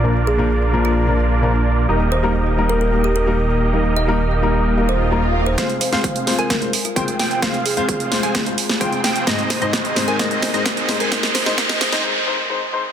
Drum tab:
HH |----------------|----------------|----------------|xxoxxxoxxxoxxxox|
SD |----------------|----------------|----------------|o--o--o-o-----o-|
BD |----------------|----------------|----------------|o---o---o---o---|

HH |xxoxxxoxxxoxxxox|xxoxxxoxxxoxxxox|xxo-xxox--------|
SD |o-----o-o--o--o-|o-o-o-o-o-o-o-o-|oooooooo--------|
BD |o---o---o---o---|o---o---o---o---|o---o-----------|